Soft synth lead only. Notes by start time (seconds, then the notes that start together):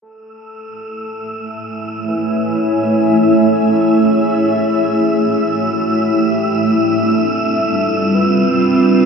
0.02 A4
2.08 B4
3.10 A4
4.11 G#4
5.62 F#4
6.12 G4
7.13 A4
8.14 B4